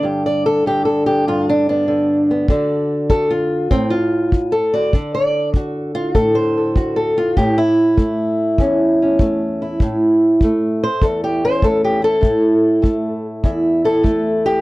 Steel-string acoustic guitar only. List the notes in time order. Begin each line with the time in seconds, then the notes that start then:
Already playing: D3 D4
0.03 G2 G4
0.26 D5
0.46 A4
0.66 D3 G4
0.85 A4
1.06 G4
1.27 G2 F4
1.49 D4
1.69 B3 D4
1.88 D3
2.31 B3
2.50 D3 F#4 A4 D5
3.10 F#4 A4
3.30 F4
3.71 A2 C4
3.90 F4
4.52 A4
4.74 F#4 D5
4.94 D3 A4
5.15 D5
5.56 F#4
5.95 F4
6.15 A2 A4
6.35 C5
6.57 A4
6.77 F#4
6.96 A4
7.18 F4
7.37 A2 G4
7.58 E4
7.97 A3
8.59 E2 C#4
9.02 C#4
9.20 A3
9.62 E4
9.82 A2
10.44 A3
10.84 C5
11.02 E2 A4
11.24 G4
11.45 C#4 C5
11.63 A3 A4
11.84 G4
12.02 E4 A4
12.21 A2 E4
12.82 A3
13.44 E2 E4
13.85 E4 A4
14.03 A3
14.46 E4 G4